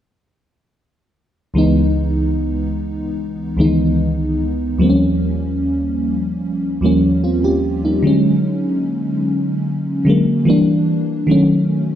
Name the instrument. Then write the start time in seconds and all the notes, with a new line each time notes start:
fm electric piano
1.54 C#2 E3 G#3 B3
1.58 D#4
3.57 C#2 D#3 G#3 B3
3.61 E3 D#4
4.78 D#2 F3 G3 A#3
4.83 C4
4.90 C#4
6.81 D#2 F3 G3 A#3
6.86 C#4
7.24 C4 F4
7.44 C#4 G4
7.85 A#3 D#4
8.02 D3 F#3 G#3
8.07 C#4
10.05 D3 F#3 G#3
10.10 A#3
10.45 E3 G3 A#3
10.50 D4
11.27 D#3 F#3 A3
11.31 C#4